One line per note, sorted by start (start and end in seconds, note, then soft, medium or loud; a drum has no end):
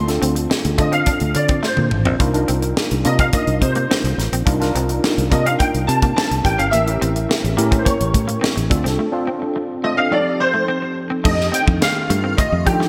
0.00 0.18 D2 medium
0.00 0.07 C4 medium
0.00 0.08 D4 medium
0.00 0.08 F4 medium
0.00 0.08 A4 medium
0.07 0.59 C4 medium
0.07 0.59 D4 medium
0.07 0.60 F4 medium
0.07 0.60 A4 medium
0.07 snare soft
0.07 closed hi-hat medium
0.22 0.46 D2 medium
0.22 0.30 C4 medium
0.22 closed hi-hat medium
0.35 muted clean electric guitar stroke soft
0.35 closed hi-hat soft
0.50 muted clean electric guitar stroke soft
0.50 snare medium
0.64 0.77 D2 medium
0.64 closed hi-hat soft
0.78 1.02 D3 loud
0.78 0.87 A3 medium
0.78 1.61 C4 medium
0.78 1.61 D4 medium
0.78 1.61 F4 medium
0.78 1.61 A4 medium
0.78 0.93 D#5 medium
0.78 kick medium
0.78 closed hi-hat medium
0.92 1.01 C4 medium
0.92 1.36 F5 medium
0.92 closed hi-hat soft
1.06 1.15 D4 medium
1.06 kick medium
1.06 closed hi-hat medium
1.20 1.33 D2 medium
1.20 closed hi-hat soft
1.34 1.59 D3 medium
1.34 1.62 D5 medium
1.34 muted clean electric guitar stroke soft
1.34 closed hi-hat medium
1.48 1.57 C4 medium
1.48 kick medium
1.48 closed hi-hat soft
1.63 1.71 A3 medium
1.63 2.04 C5 medium
1.63 snare soft
1.77 1.90 A#2 medium
1.77 muted clean electric guitar stroke soft
1.77 high tom medium
1.91 2.06 A1 medium
1.91 mid tom medium
2.05 2.18 A#1 medium
2.05 2.14 C4 medium
2.05 floor tom medium
2.19 2.44 C2 loud
2.19 2.28 A#3 medium
2.19 2.30 D4 medium
2.19 2.30 D#4 medium
2.19 2.30 F4 medium
2.19 2.30 A#4 medium
2.19 kick loud
2.19 closed hi-hat medium
2.34 2.86 D4 medium
2.34 2.86 D#4 medium
2.34 2.86 F4 medium
2.34 2.86 A#4 medium
2.34 closed hi-hat soft
2.48 2.72 C2 medium
2.48 2.56 C4 medium
2.48 closed hi-hat medium
2.62 muted clean electric guitar stroke soft
2.62 closed hi-hat soft
2.77 muted clean electric guitar stroke soft
2.77 snare medium
2.91 3.03 C2 medium
2.91 closed hi-hat soft
3.04 3.29 C3 medium
3.04 3.13 A#3 medium
3.04 3.87 D4 medium
3.04 3.87 D#4 medium
3.04 3.88 F4 medium
3.04 3.88 A#4 medium
3.04 3.19 D#5 medium
3.04 closed hi-hat medium
3.19 3.28 C4 medium
3.19 3.24 F5 medium
3.19 kick medium
3.19 closed hi-hat medium
3.32 3.42 A#3 medium
3.32 3.63 D#5 medium
3.32 kick medium
3.32 closed hi-hat medium
3.47 3.59 C2 medium
3.47 closed hi-hat soft
3.61 3.85 C3 loud
3.61 4.14 C5 medium
3.61 muted clean electric guitar stroke soft
3.61 kick medium
3.61 closed hi-hat medium
3.75 3.84 A#3 medium
3.75 closed hi-hat soft
3.91 3.99 C4 medium
3.91 snare loud
4.04 4.16 C2 medium
4.04 muted clean electric guitar stroke soft
4.04 closed hi-hat soft
4.18 4.30 A1 medium
4.18 snare soft
4.18 closed hi-hat medium
4.32 4.44 A#1 medium
4.32 4.41 C4 medium
4.32 closed hi-hat medium
4.46 4.70 C2 loud
4.46 4.55 A#3 medium
4.46 4.56 D4 medium
4.46 4.57 D#4 medium
4.46 4.57 F4 medium
4.46 4.57 A#4 medium
4.46 kick loud
4.46 closed hi-hat medium
4.60 5.12 D4 medium
4.60 5.12 D#4 medium
4.60 5.12 F4 medium
4.60 5.13 A#4 medium
4.60 snare soft
4.60 closed hi-hat soft
4.75 4.99 C2 loud
4.75 4.84 C4 medium
4.75 closed hi-hat medium
4.89 muted clean electric guitar stroke soft
4.89 closed hi-hat soft
5.04 muted clean electric guitar stroke soft
5.04 snare loud
5.18 5.29 C2 medium
5.18 closed hi-hat soft
5.31 5.55 C3 medium
5.31 5.40 A#3 medium
5.31 6.14 D4 medium
5.31 6.14 D#4 medium
5.31 6.14 F4 medium
5.31 6.14 A#4 medium
5.31 5.45 D#5 medium
5.31 kick medium
5.31 closed hi-hat medium
5.46 5.54 C4 medium
5.46 5.51 F5 medium
5.46 closed hi-hat soft
5.59 5.68 A#3 medium
5.59 5.65 G5 medium
5.59 kick medium
5.59 closed hi-hat medium
5.74 5.86 C2 medium
5.74 closed hi-hat soft
5.87 6.12 C3 medium
5.87 6.15 A5 medium
5.87 muted clean electric guitar stroke soft
5.87 closed hi-hat medium
6.02 6.11 A#3 medium
6.02 kick medium
6.02 closed hi-hat soft
6.16 6.25 C4 medium
6.16 6.45 A5 medium
6.16 snare medium
6.31 6.43 C2 medium
6.31 muted clean electric guitar stroke soft
6.31 closed hi-hat soft
6.44 6.57 A1 medium
6.44 6.78 C#4 medium
6.44 6.78 E4 medium
6.44 6.79 G4 medium
6.44 6.79 A#4 medium
6.44 6.59 G5 medium
6.44 kick medium
6.44 closed hi-hat medium
6.58 6.71 G1 medium
6.58 6.67 C#4 medium
6.58 6.73 F5 medium
6.58 closed hi-hat soft
6.71 6.97 A1 loud
6.71 6.81 A#3 medium
6.71 7.81 E5 medium
6.71 closed hi-hat medium
6.86 7.38 C#4 medium
6.86 7.38 E4 medium
6.86 7.39 G4 medium
6.86 7.39 A#4 medium
6.86 closed hi-hat soft
7.01 7.25 A1 medium
7.01 7.10 C4 medium
7.01 closed hi-hat medium
7.16 muted clean electric guitar stroke soft
7.16 closed hi-hat soft
7.29 muted clean electric guitar stroke soft
7.29 snare loud
7.44 7.56 A1 medium
7.44 closed hi-hat soft
7.57 7.82 A2 loud
7.57 7.66 A#3 medium
7.57 8.40 C#4 medium
7.57 8.40 E4 medium
7.57 8.40 G4 medium
7.57 8.40 A#4 loud
7.57 closed hi-hat medium
7.71 7.80 C4 medium
7.71 kick medium
7.71 closed hi-hat soft
7.78 7.86 C5 medium
7.85 7.94 A#3 medium
7.85 8.66 C#5 medium
7.85 kick medium
7.85 closed hi-hat medium
8.00 8.12 A1 medium
8.00 closed hi-hat soft
8.14 8.38 A2 medium
8.14 muted clean electric guitar stroke soft
8.14 kick medium
8.14 closed hi-hat medium
8.28 8.36 A#3 medium
8.28 closed hi-hat soft
8.41 8.50 C4 medium
8.41 snare loud
8.56 8.69 A1 medium
8.56 muted clean electric guitar stroke soft
8.56 closed hi-hat soft
8.69 8.83 D2 medium
8.69 9.04 C4 medium
8.69 9.04 D4 medium
8.69 9.05 F4 medium
8.69 9.05 A4 loud
8.69 kick loud
8.69 closed hi-hat medium
8.84 8.97 C2 medium
8.84 8.93 C4 medium
8.84 snare soft
8.84 closed hi-hat medium
8.99 9.07 A3 medium
9.12 9.64 C4 medium
9.12 9.64 D4 medium
9.12 9.65 F4 medium
9.12 9.65 A4 medium
9.27 9.36 C4 medium
9.42 muted clean electric guitar stroke soft
9.56 muted clean electric guitar stroke soft
9.83 9.92 A3 medium
9.83 10.10 C4 medium
9.83 10.12 D4 medium
9.83 10.12 F4 medium
9.83 10.11 A4 medium
9.83 9.99 D#5 medium
9.97 10.07 C4 medium
9.97 10.12 F5 medium
10.11 11.02 F3 medium
10.11 10.20 A3 medium
10.11 11.02 C4 medium
10.11 11.03 D#4 medium
10.11 11.02 G4 medium
10.11 11.03 A4 medium
10.11 10.41 D5 medium
10.40 10.93 C5 loud
10.40 muted clean electric guitar stroke soft
10.54 10.62 A3 medium
10.68 10.77 C4 medium
10.82 muted clean electric guitar stroke soft
11.10 11.19 C4 medium
11.24 11.49 F2 loud
11.24 12.89 D#3 medium
11.24 11.33 A3 medium
11.24 12.89 A3 medium
11.24 12.07 D4 medium
11.24 12.07 D#4 medium
11.24 12.89 F4 medium
11.24 12.08 G4 medium
11.24 12.08 A4 medium
11.24 11.51 D#5 medium
11.24 kick loud
11.24 crash medium
11.40 snare soft
11.52 11.61 C4 medium
11.52 11.60 G5 medium
11.52 closed hi-hat medium
11.67 11.80 F2 medium
11.67 muted clean electric guitar stroke soft
11.67 kick medium
11.81 12.40 F5 medium
11.81 muted clean electric guitar stroke soft
11.81 snare loud
11.81 closed hi-hat medium
12.10 12.34 G2 medium
12.10 12.18 A3 medium
12.10 closed hi-hat medium
12.24 12.32 C4 medium
12.37 12.47 A3 medium
12.37 12.64 D#5 medium
12.37 kick medium
12.37 closed hi-hat medium
12.52 12.64 F2 medium
12.65 12.89 F3 medium
12.65 12.89 D4 medium
12.65 12.89 D#4 medium
12.65 12.89 G4 medium
12.65 12.89 A4 medium
12.65 muted clean electric guitar stroke soft
12.65 kick medium
12.65 closed hi-hat medium
12.80 12.89 A3 medium
12.80 snare soft